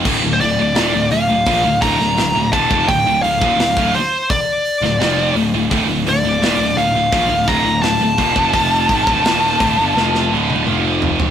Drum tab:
CC |x---------------|----------------|----------------|----------------|
HH |--o-o-o-o-o-o-o-|o-o-o-o-o-o-o-o-|o-o-o-o-o-o-o-o-|o-o-o-o---------|
SD |----o------oo---|----o------oo---|----o-------o---|----o---oo------|
T1 |----------------|----------------|----------------|-----------o----|
T2 |----------------|----------------|----------------|------------o---|
FT |----------------|----------------|----------------|--------------oo|
BD |o-------o-o---oo|o--o-o--o-------|o-------o-o---oo|o-oo--o---------|